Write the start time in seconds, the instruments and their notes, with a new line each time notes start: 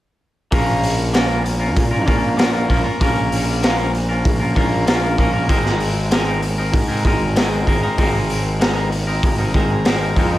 0.51 picked electric bass A#1, clean electric guitar A#3 C#4 F4 A#4, kick, open hi-hat
0.83 open hi-hat
1.13 clean electric guitar A#3 C#4 F4 A#4, snare, open hi-hat
1.28 clean electric guitar C#4 F4 A#4
1.44 muted clean electric guitar stroke, open hi-hat
1.60 clean electric guitar C#4 F4 A#4
1.76 picked electric bass A#2, kick, open hi-hat
1.91 clean electric guitar C#4 F4 A#4
2.06 picked electric bass A#1, clean electric guitar A#3 C#4 F4 A#4, kick, open hi-hat
2.37 clean electric guitar A#3 C#4 F4 A#4, snare, open hi-hat
2.52 clean electric guitar C#4 F4 A#4
2.68 picked electric bass A#1, clean electric guitar A#3 C#4 F4 A#4, kick, open hi-hat
2.84 clean electric guitar C#4 F4 A#4
3.00 picked electric bass A#1, clean electric guitar A#3 C#4 F4 A#4, kick, open hi-hat
3.32 open hi-hat
3.63 clean electric guitar A#3 C#4 F4 A#4, snare, open hi-hat
3.78 clean electric guitar C#4 F4 A#4
3.93 muted clean electric guitar stroke, open hi-hat
4.09 clean electric guitar C#4 F4 A#4
4.25 picked electric bass A#1, kick, open hi-hat
4.40 clean electric guitar C#4 F4 A#4
4.55 picked electric bass A#1, clean electric guitar A#3 C#4 F4 A#4, kick, open hi-hat
4.87 clean electric guitar A#3 C#4 F4 A#4, snare, open hi-hat
5.02 clean electric guitar C#4 F4 A#4
5.18 picked electric bass A#1, clean electric guitar A#3 C#4 F4 A#4, kick, open hi-hat
5.33 clean electric guitar C#4 F4 A#4
5.49 picked electric bass G#1, clean electric guitar G#3 C4 D#4 A#4, kick, open hi-hat
5.66 snare
5.80 open hi-hat
6.11 clean electric guitar G#3 C4 D#4 A#4, snare, open hi-hat
6.27 clean electric guitar C4 D#4 A#4
6.42 muted clean electric guitar stroke, open hi-hat
6.58 clean electric guitar C4 D#4 A#4
6.73 picked electric bass G#2, kick, open hi-hat
6.89 clean electric guitar C4 D#4 A#4
7.05 picked electric bass G#1, clean electric guitar G#3 C4 D#4 A#4, kick, open hi-hat
7.36 clean electric guitar G#3 C4 D#4 A#4, snare, open hi-hat
7.52 clean electric guitar C4 D#4 A#4
7.66 picked electric bass G#1, clean electric guitar G#3 C4 D#4 A#4, kick, open hi-hat
7.83 clean electric guitar C4 D#4 A#4
7.98 picked electric bass G#1, clean electric guitar G#3 C4 D#4 A#4, kick, open hi-hat
8.30 open hi-hat
8.60 clean electric guitar G#3 C4 D#4 A#4, snare, open hi-hat
8.76 clean electric guitar C4 D#4 A#4
8.92 muted clean electric guitar stroke, open hi-hat
9.07 clean electric guitar C4 D#4 A#4
9.23 picked electric bass G#1, kick, open hi-hat
9.38 clean electric guitar C4 D#4 A#4
9.54 picked electric bass G#1, clean electric guitar G#3 C4 D#4 A#4, kick, open hi-hat
9.85 clean electric guitar G#3 C4 D#4 A#4, snare, open hi-hat
10.01 clean electric guitar C4 D#4 A#4
10.16 picked electric bass F2, clean electric guitar G#3 C4 D#4 A#4, kick, open hi-hat
10.32 clean electric guitar C4 D#4 A#4